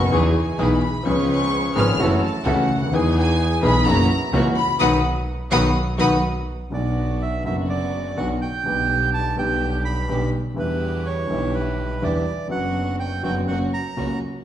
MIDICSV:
0, 0, Header, 1, 6, 480
1, 0, Start_track
1, 0, Key_signature, 5, "major"
1, 0, Tempo, 468384
1, 1090, Time_signature, 4, 2, 24, 8
1, 5892, Tempo, 482315
1, 6852, Key_signature, 2, "minor"
1, 12612, Tempo, 490597
1, 14511, End_track
2, 0, Start_track
2, 0, Title_t, "Violin section"
2, 0, Program_c, 0, 48
2, 0, Note_on_c, 0, 85, 85
2, 111, Note_off_c, 0, 85, 0
2, 370, Note_on_c, 0, 80, 70
2, 595, Note_off_c, 0, 80, 0
2, 617, Note_on_c, 0, 83, 84
2, 1092, Note_on_c, 0, 85, 91
2, 1093, Note_off_c, 0, 83, 0
2, 1309, Note_off_c, 0, 85, 0
2, 1322, Note_on_c, 0, 85, 100
2, 1767, Note_off_c, 0, 85, 0
2, 1806, Note_on_c, 0, 89, 92
2, 2026, Note_off_c, 0, 89, 0
2, 2279, Note_on_c, 0, 81, 80
2, 2500, Note_off_c, 0, 81, 0
2, 2526, Note_on_c, 0, 78, 83
2, 3000, Note_off_c, 0, 78, 0
2, 3014, Note_on_c, 0, 80, 98
2, 3244, Note_off_c, 0, 80, 0
2, 3255, Note_on_c, 0, 80, 102
2, 3692, Note_off_c, 0, 80, 0
2, 3733, Note_on_c, 0, 83, 108
2, 3963, Note_on_c, 0, 82, 102
2, 3964, Note_off_c, 0, 83, 0
2, 4440, Note_off_c, 0, 82, 0
2, 4672, Note_on_c, 0, 83, 107
2, 4900, Note_off_c, 0, 83, 0
2, 4911, Note_on_c, 0, 87, 94
2, 4913, Note_on_c, 0, 83, 90
2, 4914, Note_on_c, 0, 78, 96
2, 5070, Note_off_c, 0, 87, 0
2, 5071, Note_off_c, 0, 83, 0
2, 5072, Note_off_c, 0, 78, 0
2, 5647, Note_on_c, 0, 83, 92
2, 5648, Note_on_c, 0, 78, 92
2, 5649, Note_on_c, 0, 87, 95
2, 5804, Note_off_c, 0, 78, 0
2, 5804, Note_off_c, 0, 83, 0
2, 5805, Note_off_c, 0, 87, 0
2, 6132, Note_on_c, 0, 83, 75
2, 6134, Note_on_c, 0, 87, 87
2, 6135, Note_on_c, 0, 78, 88
2, 6284, Note_off_c, 0, 83, 0
2, 6285, Note_off_c, 0, 87, 0
2, 6286, Note_off_c, 0, 78, 0
2, 14511, End_track
3, 0, Start_track
3, 0, Title_t, "Bandoneon"
3, 0, Program_c, 1, 23
3, 6873, Note_on_c, 1, 74, 59
3, 7355, Note_on_c, 1, 76, 61
3, 7361, Note_off_c, 1, 74, 0
3, 7571, Note_off_c, 1, 76, 0
3, 7591, Note_on_c, 1, 76, 62
3, 7697, Note_off_c, 1, 76, 0
3, 7828, Note_on_c, 1, 74, 67
3, 8303, Note_on_c, 1, 78, 68
3, 8322, Note_off_c, 1, 74, 0
3, 8412, Note_off_c, 1, 78, 0
3, 8546, Note_on_c, 1, 79, 79
3, 9227, Note_off_c, 1, 79, 0
3, 9265, Note_on_c, 1, 81, 81
3, 9487, Note_off_c, 1, 81, 0
3, 9511, Note_on_c, 1, 79, 78
3, 9950, Note_off_c, 1, 79, 0
3, 9971, Note_on_c, 1, 83, 69
3, 10421, Note_off_c, 1, 83, 0
3, 10709, Note_on_c, 1, 71, 65
3, 11178, Note_on_c, 1, 73, 72
3, 11194, Note_off_c, 1, 71, 0
3, 11659, Note_on_c, 1, 71, 61
3, 11669, Note_off_c, 1, 73, 0
3, 12150, Note_on_c, 1, 74, 71
3, 12151, Note_off_c, 1, 71, 0
3, 12589, Note_off_c, 1, 74, 0
3, 12622, Note_on_c, 1, 78, 74
3, 13060, Note_off_c, 1, 78, 0
3, 13096, Note_on_c, 1, 79, 79
3, 13320, Note_off_c, 1, 79, 0
3, 13334, Note_on_c, 1, 79, 73
3, 13441, Note_off_c, 1, 79, 0
3, 13565, Note_on_c, 1, 78, 64
3, 13674, Note_off_c, 1, 78, 0
3, 13819, Note_on_c, 1, 82, 68
3, 14264, Note_off_c, 1, 82, 0
3, 14511, End_track
4, 0, Start_track
4, 0, Title_t, "String section"
4, 0, Program_c, 2, 48
4, 124, Note_on_c, 2, 63, 82
4, 126, Note_on_c, 2, 68, 98
4, 127, Note_on_c, 2, 64, 80
4, 330, Note_off_c, 2, 63, 0
4, 331, Note_off_c, 2, 64, 0
4, 331, Note_off_c, 2, 68, 0
4, 602, Note_on_c, 2, 63, 83
4, 604, Note_on_c, 2, 64, 74
4, 606, Note_on_c, 2, 68, 83
4, 809, Note_off_c, 2, 63, 0
4, 810, Note_off_c, 2, 64, 0
4, 811, Note_off_c, 2, 68, 0
4, 1079, Note_on_c, 2, 61, 83
4, 1080, Note_on_c, 2, 65, 73
4, 1081, Note_on_c, 2, 71, 99
4, 1762, Note_off_c, 2, 61, 0
4, 1762, Note_off_c, 2, 65, 0
4, 1763, Note_off_c, 2, 71, 0
4, 1792, Note_on_c, 2, 61, 79
4, 1794, Note_on_c, 2, 65, 74
4, 1799, Note_on_c, 2, 71, 91
4, 1997, Note_off_c, 2, 61, 0
4, 1998, Note_off_c, 2, 65, 0
4, 2001, Note_off_c, 2, 71, 0
4, 2035, Note_on_c, 2, 66, 77
4, 2036, Note_on_c, 2, 64, 93
4, 2039, Note_on_c, 2, 69, 96
4, 2238, Note_off_c, 2, 64, 0
4, 2238, Note_off_c, 2, 66, 0
4, 2240, Note_off_c, 2, 69, 0
4, 2506, Note_on_c, 2, 64, 80
4, 2509, Note_on_c, 2, 66, 76
4, 2510, Note_on_c, 2, 69, 87
4, 2712, Note_off_c, 2, 64, 0
4, 2714, Note_off_c, 2, 66, 0
4, 2714, Note_off_c, 2, 69, 0
4, 2987, Note_on_c, 2, 63, 84
4, 2992, Note_on_c, 2, 68, 93
4, 3674, Note_off_c, 2, 63, 0
4, 3677, Note_off_c, 2, 68, 0
4, 3708, Note_on_c, 2, 68, 86
4, 3709, Note_on_c, 2, 63, 82
4, 3711, Note_on_c, 2, 64, 66
4, 3913, Note_off_c, 2, 63, 0
4, 3913, Note_off_c, 2, 68, 0
4, 3914, Note_off_c, 2, 64, 0
4, 3952, Note_on_c, 2, 58, 90
4, 3953, Note_on_c, 2, 64, 82
4, 3954, Note_on_c, 2, 66, 96
4, 4155, Note_off_c, 2, 58, 0
4, 4156, Note_off_c, 2, 64, 0
4, 4156, Note_off_c, 2, 66, 0
4, 4433, Note_on_c, 2, 58, 78
4, 4438, Note_on_c, 2, 64, 68
4, 4440, Note_on_c, 2, 66, 97
4, 4637, Note_off_c, 2, 58, 0
4, 4640, Note_off_c, 2, 64, 0
4, 4641, Note_off_c, 2, 66, 0
4, 4922, Note_on_c, 2, 63, 92
4, 4923, Note_on_c, 2, 66, 86
4, 4924, Note_on_c, 2, 59, 100
4, 5077, Note_off_c, 2, 63, 0
4, 5077, Note_off_c, 2, 66, 0
4, 5078, Note_off_c, 2, 59, 0
4, 5645, Note_on_c, 2, 59, 95
4, 5645, Note_on_c, 2, 63, 89
4, 5646, Note_on_c, 2, 66, 90
4, 5802, Note_off_c, 2, 59, 0
4, 5802, Note_off_c, 2, 63, 0
4, 5802, Note_off_c, 2, 66, 0
4, 6123, Note_on_c, 2, 63, 85
4, 6125, Note_on_c, 2, 66, 89
4, 6127, Note_on_c, 2, 59, 80
4, 6279, Note_off_c, 2, 63, 0
4, 6280, Note_off_c, 2, 66, 0
4, 6281, Note_off_c, 2, 59, 0
4, 6846, Note_on_c, 2, 62, 58
4, 6847, Note_on_c, 2, 59, 60
4, 6848, Note_on_c, 2, 66, 61
4, 7539, Note_off_c, 2, 62, 0
4, 7540, Note_off_c, 2, 59, 0
4, 7540, Note_off_c, 2, 66, 0
4, 7575, Note_on_c, 2, 62, 55
4, 7576, Note_on_c, 2, 59, 61
4, 7579, Note_on_c, 2, 66, 75
4, 8266, Note_off_c, 2, 59, 0
4, 8266, Note_off_c, 2, 62, 0
4, 8268, Note_off_c, 2, 66, 0
4, 8298, Note_on_c, 2, 59, 62
4, 8300, Note_on_c, 2, 62, 53
4, 8304, Note_on_c, 2, 66, 67
4, 8504, Note_off_c, 2, 59, 0
4, 8504, Note_off_c, 2, 62, 0
4, 8506, Note_off_c, 2, 66, 0
4, 8781, Note_on_c, 2, 59, 68
4, 8784, Note_on_c, 2, 62, 60
4, 8787, Note_on_c, 2, 67, 71
4, 9466, Note_off_c, 2, 59, 0
4, 9468, Note_off_c, 2, 62, 0
4, 9469, Note_off_c, 2, 67, 0
4, 9505, Note_on_c, 2, 62, 58
4, 9506, Note_on_c, 2, 59, 66
4, 9508, Note_on_c, 2, 67, 74
4, 10184, Note_off_c, 2, 62, 0
4, 10185, Note_off_c, 2, 59, 0
4, 10186, Note_off_c, 2, 67, 0
4, 10217, Note_on_c, 2, 62, 59
4, 10218, Note_on_c, 2, 59, 62
4, 10219, Note_on_c, 2, 67, 62
4, 10420, Note_off_c, 2, 59, 0
4, 10420, Note_off_c, 2, 62, 0
4, 10420, Note_off_c, 2, 67, 0
4, 10699, Note_on_c, 2, 64, 63
4, 10700, Note_on_c, 2, 62, 66
4, 10705, Note_on_c, 2, 67, 74
4, 11378, Note_off_c, 2, 62, 0
4, 11378, Note_off_c, 2, 64, 0
4, 11381, Note_off_c, 2, 67, 0
4, 11407, Note_on_c, 2, 62, 70
4, 11408, Note_on_c, 2, 64, 59
4, 11408, Note_on_c, 2, 67, 72
4, 12095, Note_off_c, 2, 62, 0
4, 12095, Note_off_c, 2, 64, 0
4, 12095, Note_off_c, 2, 67, 0
4, 12128, Note_on_c, 2, 62, 65
4, 12132, Note_on_c, 2, 64, 59
4, 12136, Note_on_c, 2, 67, 64
4, 12333, Note_off_c, 2, 62, 0
4, 12335, Note_off_c, 2, 64, 0
4, 12337, Note_off_c, 2, 67, 0
4, 12616, Note_on_c, 2, 59, 57
4, 12618, Note_on_c, 2, 62, 55
4, 12619, Note_on_c, 2, 66, 68
4, 13294, Note_off_c, 2, 59, 0
4, 13294, Note_off_c, 2, 62, 0
4, 13295, Note_off_c, 2, 66, 0
4, 13329, Note_on_c, 2, 62, 58
4, 13330, Note_on_c, 2, 59, 63
4, 13331, Note_on_c, 2, 66, 63
4, 13530, Note_off_c, 2, 59, 0
4, 13530, Note_off_c, 2, 62, 0
4, 13531, Note_off_c, 2, 66, 0
4, 13564, Note_on_c, 2, 58, 66
4, 13565, Note_on_c, 2, 61, 61
4, 13566, Note_on_c, 2, 66, 80
4, 13768, Note_off_c, 2, 58, 0
4, 13769, Note_off_c, 2, 61, 0
4, 13769, Note_off_c, 2, 66, 0
4, 14044, Note_on_c, 2, 58, 62
4, 14046, Note_on_c, 2, 61, 56
4, 14049, Note_on_c, 2, 66, 71
4, 14251, Note_off_c, 2, 58, 0
4, 14252, Note_off_c, 2, 61, 0
4, 14253, Note_off_c, 2, 66, 0
4, 14511, End_track
5, 0, Start_track
5, 0, Title_t, "Grand piano"
5, 0, Program_c, 3, 0
5, 120, Note_on_c, 3, 52, 86
5, 123, Note_on_c, 3, 40, 85
5, 124, Note_on_c, 3, 63, 62
5, 125, Note_on_c, 3, 59, 61
5, 126, Note_on_c, 3, 68, 82
5, 329, Note_off_c, 3, 40, 0
5, 330, Note_off_c, 3, 52, 0
5, 330, Note_off_c, 3, 59, 0
5, 330, Note_off_c, 3, 63, 0
5, 331, Note_off_c, 3, 68, 0
5, 601, Note_on_c, 3, 52, 75
5, 602, Note_on_c, 3, 47, 87
5, 603, Note_on_c, 3, 35, 88
5, 603, Note_on_c, 3, 59, 67
5, 603, Note_on_c, 3, 63, 75
5, 608, Note_on_c, 3, 68, 82
5, 809, Note_off_c, 3, 35, 0
5, 809, Note_off_c, 3, 47, 0
5, 809, Note_off_c, 3, 52, 0
5, 809, Note_off_c, 3, 59, 0
5, 810, Note_off_c, 3, 63, 0
5, 812, Note_off_c, 3, 68, 0
5, 1061, Note_on_c, 3, 53, 69
5, 1076, Note_on_c, 3, 59, 72
5, 1081, Note_on_c, 3, 37, 89
5, 1083, Note_on_c, 3, 49, 92
5, 1086, Note_on_c, 3, 61, 67
5, 1105, Note_on_c, 3, 68, 81
5, 1753, Note_off_c, 3, 53, 0
5, 1761, Note_off_c, 3, 59, 0
5, 1763, Note_off_c, 3, 37, 0
5, 1764, Note_off_c, 3, 49, 0
5, 1765, Note_off_c, 3, 61, 0
5, 1775, Note_off_c, 3, 68, 0
5, 1801, Note_on_c, 3, 53, 80
5, 1802, Note_on_c, 3, 59, 69
5, 1803, Note_on_c, 3, 44, 88
5, 1804, Note_on_c, 3, 32, 83
5, 1805, Note_on_c, 3, 61, 72
5, 1805, Note_on_c, 3, 68, 87
5, 2002, Note_off_c, 3, 53, 0
5, 2002, Note_off_c, 3, 59, 0
5, 2003, Note_off_c, 3, 32, 0
5, 2003, Note_off_c, 3, 44, 0
5, 2004, Note_off_c, 3, 61, 0
5, 2004, Note_off_c, 3, 68, 0
5, 2037, Note_on_c, 3, 52, 74
5, 2040, Note_on_c, 3, 54, 92
5, 2043, Note_on_c, 3, 57, 62
5, 2044, Note_on_c, 3, 42, 88
5, 2047, Note_on_c, 3, 61, 69
5, 2050, Note_on_c, 3, 66, 85
5, 2239, Note_off_c, 3, 52, 0
5, 2240, Note_off_c, 3, 54, 0
5, 2242, Note_off_c, 3, 42, 0
5, 2242, Note_off_c, 3, 57, 0
5, 2243, Note_off_c, 3, 61, 0
5, 2245, Note_off_c, 3, 66, 0
5, 2519, Note_on_c, 3, 52, 75
5, 2520, Note_on_c, 3, 61, 69
5, 2521, Note_on_c, 3, 37, 88
5, 2522, Note_on_c, 3, 49, 92
5, 2523, Note_on_c, 3, 57, 76
5, 2525, Note_on_c, 3, 66, 85
5, 2719, Note_off_c, 3, 52, 0
5, 2719, Note_off_c, 3, 61, 0
5, 2720, Note_off_c, 3, 37, 0
5, 2720, Note_off_c, 3, 49, 0
5, 2721, Note_off_c, 3, 57, 0
5, 2722, Note_off_c, 3, 66, 0
5, 2823, Note_on_c, 3, 37, 49
5, 2879, Note_off_c, 3, 37, 0
5, 2883, Note_on_c, 3, 38, 60
5, 2931, Note_on_c, 3, 39, 71
5, 2939, Note_off_c, 3, 38, 0
5, 2988, Note_on_c, 3, 52, 83
5, 2993, Note_off_c, 3, 39, 0
5, 3003, Note_off_c, 3, 52, 0
5, 3005, Note_on_c, 3, 40, 88
5, 3005, Note_on_c, 3, 59, 67
5, 3010, Note_on_c, 3, 52, 82
5, 3014, Note_on_c, 3, 63, 71
5, 3028, Note_on_c, 3, 68, 88
5, 3683, Note_off_c, 3, 40, 0
5, 3683, Note_off_c, 3, 59, 0
5, 3686, Note_off_c, 3, 52, 0
5, 3688, Note_off_c, 3, 63, 0
5, 3695, Note_off_c, 3, 68, 0
5, 3713, Note_on_c, 3, 59, 77
5, 3714, Note_on_c, 3, 47, 87
5, 3714, Note_on_c, 3, 52, 80
5, 3716, Note_on_c, 3, 35, 85
5, 3718, Note_on_c, 3, 63, 69
5, 3718, Note_on_c, 3, 68, 88
5, 3915, Note_off_c, 3, 59, 0
5, 3916, Note_off_c, 3, 47, 0
5, 3916, Note_off_c, 3, 52, 0
5, 3917, Note_off_c, 3, 35, 0
5, 3918, Note_off_c, 3, 63, 0
5, 3918, Note_off_c, 3, 68, 0
5, 3953, Note_on_c, 3, 58, 70
5, 3956, Note_on_c, 3, 42, 79
5, 3956, Note_on_c, 3, 52, 71
5, 3956, Note_on_c, 3, 61, 62
5, 3958, Note_on_c, 3, 54, 88
5, 3958, Note_on_c, 3, 66, 74
5, 4156, Note_off_c, 3, 58, 0
5, 4157, Note_off_c, 3, 42, 0
5, 4157, Note_off_c, 3, 52, 0
5, 4157, Note_off_c, 3, 61, 0
5, 4158, Note_off_c, 3, 54, 0
5, 4158, Note_off_c, 3, 66, 0
5, 4437, Note_on_c, 3, 52, 76
5, 4439, Note_on_c, 3, 61, 72
5, 4440, Note_on_c, 3, 37, 91
5, 4441, Note_on_c, 3, 58, 63
5, 4442, Note_on_c, 3, 49, 91
5, 4445, Note_on_c, 3, 66, 84
5, 4639, Note_off_c, 3, 52, 0
5, 4640, Note_off_c, 3, 61, 0
5, 4641, Note_off_c, 3, 37, 0
5, 4641, Note_off_c, 3, 58, 0
5, 4642, Note_off_c, 3, 49, 0
5, 4643, Note_off_c, 3, 66, 0
5, 4924, Note_on_c, 3, 51, 91
5, 4927, Note_on_c, 3, 59, 84
5, 4930, Note_on_c, 3, 54, 97
5, 5078, Note_off_c, 3, 51, 0
5, 5080, Note_off_c, 3, 59, 0
5, 5081, Note_off_c, 3, 54, 0
5, 5650, Note_on_c, 3, 51, 93
5, 5650, Note_on_c, 3, 59, 91
5, 5652, Note_on_c, 3, 54, 99
5, 5805, Note_off_c, 3, 51, 0
5, 5805, Note_off_c, 3, 59, 0
5, 5806, Note_off_c, 3, 54, 0
5, 6124, Note_on_c, 3, 51, 96
5, 6126, Note_on_c, 3, 54, 89
5, 6128, Note_on_c, 3, 59, 97
5, 6279, Note_off_c, 3, 51, 0
5, 6281, Note_off_c, 3, 54, 0
5, 6282, Note_off_c, 3, 59, 0
5, 6837, Note_on_c, 3, 50, 53
5, 6848, Note_on_c, 3, 54, 50
5, 6855, Note_on_c, 3, 35, 64
5, 6858, Note_on_c, 3, 47, 65
5, 6864, Note_on_c, 3, 59, 47
5, 6881, Note_on_c, 3, 66, 53
5, 7535, Note_off_c, 3, 50, 0
5, 7540, Note_off_c, 3, 54, 0
5, 7543, Note_off_c, 3, 35, 0
5, 7545, Note_off_c, 3, 47, 0
5, 7548, Note_off_c, 3, 59, 0
5, 7556, Note_off_c, 3, 66, 0
5, 7573, Note_on_c, 3, 50, 59
5, 7583, Note_on_c, 3, 54, 54
5, 7591, Note_on_c, 3, 42, 68
5, 7594, Note_on_c, 3, 30, 62
5, 7597, Note_on_c, 3, 59, 51
5, 7610, Note_on_c, 3, 66, 62
5, 8265, Note_off_c, 3, 50, 0
5, 8270, Note_off_c, 3, 54, 0
5, 8274, Note_off_c, 3, 42, 0
5, 8275, Note_off_c, 3, 30, 0
5, 8276, Note_off_c, 3, 59, 0
5, 8283, Note_off_c, 3, 66, 0
5, 8300, Note_on_c, 3, 54, 54
5, 8303, Note_on_c, 3, 35, 67
5, 8303, Note_on_c, 3, 47, 66
5, 8305, Note_on_c, 3, 50, 55
5, 8305, Note_on_c, 3, 59, 52
5, 8307, Note_on_c, 3, 66, 64
5, 8505, Note_off_c, 3, 54, 0
5, 8506, Note_off_c, 3, 35, 0
5, 8506, Note_off_c, 3, 47, 0
5, 8507, Note_off_c, 3, 50, 0
5, 8507, Note_off_c, 3, 59, 0
5, 8508, Note_off_c, 3, 66, 0
5, 8763, Note_on_c, 3, 50, 59
5, 8778, Note_on_c, 3, 55, 52
5, 8786, Note_on_c, 3, 47, 72
5, 8789, Note_on_c, 3, 35, 62
5, 8793, Note_on_c, 3, 59, 52
5, 8806, Note_on_c, 3, 67, 62
5, 9457, Note_off_c, 3, 50, 0
5, 9465, Note_off_c, 3, 55, 0
5, 9469, Note_off_c, 3, 47, 0
5, 9470, Note_off_c, 3, 35, 0
5, 9472, Note_off_c, 3, 59, 0
5, 9479, Note_off_c, 3, 67, 0
5, 9480, Note_on_c, 3, 50, 54
5, 9487, Note_on_c, 3, 55, 52
5, 9496, Note_on_c, 3, 35, 72
5, 9496, Note_on_c, 3, 47, 63
5, 9502, Note_on_c, 3, 59, 54
5, 9517, Note_on_c, 3, 67, 66
5, 10172, Note_off_c, 3, 50, 0
5, 10175, Note_off_c, 3, 55, 0
5, 10180, Note_off_c, 3, 35, 0
5, 10180, Note_off_c, 3, 47, 0
5, 10183, Note_off_c, 3, 59, 0
5, 10190, Note_off_c, 3, 67, 0
5, 10209, Note_on_c, 3, 35, 69
5, 10212, Note_on_c, 3, 47, 65
5, 10212, Note_on_c, 3, 50, 61
5, 10213, Note_on_c, 3, 55, 52
5, 10218, Note_on_c, 3, 59, 56
5, 10218, Note_on_c, 3, 67, 64
5, 10416, Note_off_c, 3, 35, 0
5, 10417, Note_off_c, 3, 47, 0
5, 10417, Note_off_c, 3, 50, 0
5, 10418, Note_off_c, 3, 55, 0
5, 10420, Note_off_c, 3, 59, 0
5, 10420, Note_off_c, 3, 67, 0
5, 10661, Note_on_c, 3, 50, 56
5, 10674, Note_on_c, 3, 55, 58
5, 10683, Note_on_c, 3, 40, 69
5, 10684, Note_on_c, 3, 52, 65
5, 10691, Note_on_c, 3, 59, 55
5, 10703, Note_on_c, 3, 64, 66
5, 11359, Note_off_c, 3, 50, 0
5, 11365, Note_off_c, 3, 55, 0
5, 11369, Note_off_c, 3, 40, 0
5, 11370, Note_off_c, 3, 52, 0
5, 11374, Note_off_c, 3, 59, 0
5, 11380, Note_off_c, 3, 64, 0
5, 11391, Note_on_c, 3, 50, 61
5, 11407, Note_on_c, 3, 55, 54
5, 11411, Note_on_c, 3, 47, 65
5, 11413, Note_on_c, 3, 35, 67
5, 11417, Note_on_c, 3, 59, 54
5, 11432, Note_on_c, 3, 64, 66
5, 12086, Note_off_c, 3, 50, 0
5, 12094, Note_off_c, 3, 55, 0
5, 12096, Note_off_c, 3, 47, 0
5, 12097, Note_off_c, 3, 35, 0
5, 12099, Note_off_c, 3, 59, 0
5, 12107, Note_off_c, 3, 64, 0
5, 12130, Note_on_c, 3, 50, 59
5, 12131, Note_on_c, 3, 55, 57
5, 12132, Note_on_c, 3, 40, 66
5, 12136, Note_on_c, 3, 52, 73
5, 12137, Note_on_c, 3, 64, 64
5, 12138, Note_on_c, 3, 59, 54
5, 12334, Note_off_c, 3, 50, 0
5, 12334, Note_off_c, 3, 55, 0
5, 12335, Note_off_c, 3, 40, 0
5, 12337, Note_off_c, 3, 52, 0
5, 12337, Note_off_c, 3, 64, 0
5, 12338, Note_off_c, 3, 59, 0
5, 12587, Note_on_c, 3, 50, 53
5, 12601, Note_on_c, 3, 54, 65
5, 12608, Note_on_c, 3, 42, 64
5, 12614, Note_on_c, 3, 59, 53
5, 12627, Note_on_c, 3, 66, 62
5, 13279, Note_off_c, 3, 50, 0
5, 13289, Note_off_c, 3, 42, 0
5, 13289, Note_off_c, 3, 54, 0
5, 13292, Note_off_c, 3, 59, 0
5, 13299, Note_off_c, 3, 66, 0
5, 13323, Note_on_c, 3, 42, 66
5, 13326, Note_on_c, 3, 54, 67
5, 13327, Note_on_c, 3, 50, 61
5, 13327, Note_on_c, 3, 59, 57
5, 13328, Note_on_c, 3, 66, 61
5, 13527, Note_off_c, 3, 42, 0
5, 13529, Note_off_c, 3, 50, 0
5, 13529, Note_off_c, 3, 54, 0
5, 13529, Note_off_c, 3, 59, 0
5, 13529, Note_off_c, 3, 66, 0
5, 13562, Note_on_c, 3, 49, 49
5, 13562, Note_on_c, 3, 54, 63
5, 13567, Note_on_c, 3, 42, 60
5, 13568, Note_on_c, 3, 58, 50
5, 13568, Note_on_c, 3, 66, 61
5, 13767, Note_off_c, 3, 49, 0
5, 13768, Note_off_c, 3, 54, 0
5, 13769, Note_off_c, 3, 42, 0
5, 13770, Note_off_c, 3, 58, 0
5, 13770, Note_off_c, 3, 66, 0
5, 14045, Note_on_c, 3, 49, 64
5, 14047, Note_on_c, 3, 58, 51
5, 14049, Note_on_c, 3, 66, 57
5, 14050, Note_on_c, 3, 54, 50
5, 14051, Note_on_c, 3, 37, 59
5, 14252, Note_off_c, 3, 49, 0
5, 14252, Note_off_c, 3, 58, 0
5, 14253, Note_off_c, 3, 54, 0
5, 14253, Note_off_c, 3, 66, 0
5, 14254, Note_off_c, 3, 37, 0
5, 14511, End_track
6, 0, Start_track
6, 0, Title_t, "Double bass"
6, 0, Program_c, 4, 43
6, 127, Note_on_c, 4, 40, 97
6, 332, Note_off_c, 4, 40, 0
6, 608, Note_on_c, 4, 35, 86
6, 812, Note_off_c, 4, 35, 0
6, 1080, Note_on_c, 4, 37, 93
6, 1762, Note_off_c, 4, 37, 0
6, 1804, Note_on_c, 4, 32, 100
6, 2003, Note_off_c, 4, 32, 0
6, 2033, Note_on_c, 4, 30, 96
6, 2237, Note_off_c, 4, 30, 0
6, 2511, Note_on_c, 4, 37, 85
6, 2715, Note_off_c, 4, 37, 0
6, 2755, Note_on_c, 4, 38, 67
6, 2988, Note_off_c, 4, 38, 0
6, 2994, Note_on_c, 4, 40, 94
6, 3678, Note_off_c, 4, 40, 0
6, 3719, Note_on_c, 4, 35, 99
6, 3918, Note_off_c, 4, 35, 0
6, 3960, Note_on_c, 4, 30, 105
6, 4159, Note_off_c, 4, 30, 0
6, 4436, Note_on_c, 4, 37, 96
6, 4639, Note_off_c, 4, 37, 0
6, 4922, Note_on_c, 4, 35, 92
6, 5102, Note_off_c, 4, 35, 0
6, 5654, Note_on_c, 4, 35, 99
6, 5833, Note_off_c, 4, 35, 0
6, 6141, Note_on_c, 4, 35, 88
6, 6314, Note_off_c, 4, 35, 0
6, 6862, Note_on_c, 4, 35, 69
6, 7547, Note_off_c, 4, 35, 0
6, 7585, Note_on_c, 4, 30, 77
6, 8271, Note_off_c, 4, 30, 0
6, 8307, Note_on_c, 4, 35, 59
6, 8508, Note_off_c, 4, 35, 0
6, 8795, Note_on_c, 4, 35, 73
6, 9473, Note_off_c, 4, 35, 0
6, 9511, Note_on_c, 4, 35, 79
6, 10187, Note_off_c, 4, 35, 0
6, 10220, Note_on_c, 4, 35, 65
6, 10421, Note_off_c, 4, 35, 0
6, 10700, Note_on_c, 4, 40, 70
6, 11378, Note_off_c, 4, 40, 0
6, 11417, Note_on_c, 4, 35, 79
6, 12100, Note_off_c, 4, 35, 0
6, 12136, Note_on_c, 4, 40, 64
6, 12337, Note_off_c, 4, 40, 0
6, 12619, Note_on_c, 4, 30, 67
6, 13295, Note_off_c, 4, 30, 0
6, 13337, Note_on_c, 4, 30, 75
6, 13534, Note_off_c, 4, 30, 0
6, 13571, Note_on_c, 4, 30, 71
6, 13771, Note_off_c, 4, 30, 0
6, 14058, Note_on_c, 4, 37, 64
6, 14257, Note_off_c, 4, 37, 0
6, 14511, End_track
0, 0, End_of_file